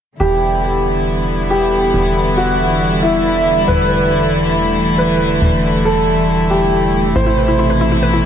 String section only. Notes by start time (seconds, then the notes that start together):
0.20 D3 E3 G3 B3 E4
3.68 A3
7.16 B2 C3 E4